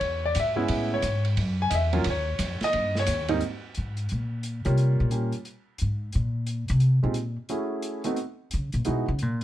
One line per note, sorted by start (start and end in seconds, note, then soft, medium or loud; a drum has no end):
0.00 0.34 E2 medium
0.00 0.22 C#5 medium
0.00 ride medium
0.26 0.36 D5 medium
0.35 0.68 G#2 medium
0.35 hi-hat pedal medium
0.35 ride medium
0.40 0.90 E5 medium
0.56 1.00 G#3 medium
0.56 1.00 B3 medium
0.56 1.00 C#4 medium
0.56 1.00 E4 medium
0.68 1.02 A2 medium
0.68 ride medium
0.94 1.24 C#5 medium
1.02 1.36 G#2 medium
1.02 hi-hat pedal soft
1.02 ride medium
1.25 ride soft
1.37 1.70 F#2 medium
1.37 ride medium
1.62 1.72 G#5 loud
1.70 2.04 E2 medium
1.70 1.73 D#5 medium
1.70 hi-hat pedal medium
1.70 ride medium
1.75 2.05 E5 medium
1.93 2.04 F#3 medium
1.93 2.04 A#3 medium
1.93 2.04 C#4 medium
1.93 2.04 F4 medium
1.93 ride medium
2.04 2.38 D#2 medium
2.04 ride medium
2.10 2.60 C#5 medium
2.39 2.59 F2 medium
2.39 hi-hat pedal medium
2.39 ride medium
2.61 2.94 D#5 loud
2.61 muted upright bass stroke soft
2.61 snare medium
2.61 ride soft
2.73 3.06 G2 medium
2.73 ride medium
2.95 snare medium
3.00 3.29 C#5 medium
3.06 3.40 D#2 medium
3.06 hi-hat pedal medium
3.06 ride medium
3.28 3.40 G#2 medium
3.28 3.40 G3 medium
3.28 3.40 A#3 medium
3.28 3.40 C4 medium
3.28 3.40 D#4 medium
3.28 ride medium
3.41 closed hi-hat soft
3.75 4.08 G#2 medium
3.75 closed hi-hat soft
3.97 closed hi-hat soft
4.09 4.63 A#2 medium
4.09 closed hi-hat soft
4.43 closed hi-hat soft
4.65 4.97 C3 medium
4.65 5.09 G3 medium
4.65 5.09 A#3 soft
4.65 5.09 F4 medium
4.65 5.09 G4 medium
4.65 5.09 C#5 medium
4.65 closed hi-hat soft
4.77 closed hi-hat soft
5.00 5.31 A#2 medium
5.11 5.31 G3 soft
5.11 5.31 A#3 soft
5.11 5.31 C#4 soft
5.11 5.31 F4 soft
5.11 5.31 G4 soft
5.11 closed hi-hat soft
5.32 closed hi-hat soft
5.45 closed hi-hat soft
5.78 6.12 G#2 medium
5.78 closed hi-hat soft
6.12 6.66 A#2 medium
6.12 closed hi-hat soft
6.47 closed hi-hat soft
6.68 7.01 C3 medium
6.68 closed hi-hat soft
6.80 closed hi-hat soft
7.03 7.35 A#2 medium
7.03 7.14 G#3 soft
7.03 7.14 C4 soft
7.03 7.14 D#4 soft
7.03 7.14 F4 soft
7.03 7.14 G4 soft
7.14 closed hi-hat soft
7.49 8.01 A3 soft
7.49 8.01 C#4 soft
7.49 8.01 E4 soft
7.49 8.01 F#4 soft
7.49 8.01 G#4 medium
7.49 closed hi-hat soft
7.82 closed hi-hat soft
8.04 8.16 A3 medium
8.04 8.16 B3 soft
8.04 8.16 C4 soft
8.04 8.16 D#4 soft
8.04 8.16 F#4 medium
8.04 closed hi-hat soft
8.16 closed hi-hat soft
8.51 8.73 C#3 medium
8.51 closed hi-hat soft
8.72 8.85 A#2 medium
8.72 closed hi-hat soft
8.85 9.08 B2 medium
8.85 9.05 G#3 medium
8.85 9.05 B3 soft
8.85 9.05 D#4 soft
8.85 9.05 E4 soft
8.85 9.05 F#4 medium
8.85 closed hi-hat soft
9.08 9.22 C#3 medium
9.19 9.42 A#2 medium
9.19 closed hi-hat soft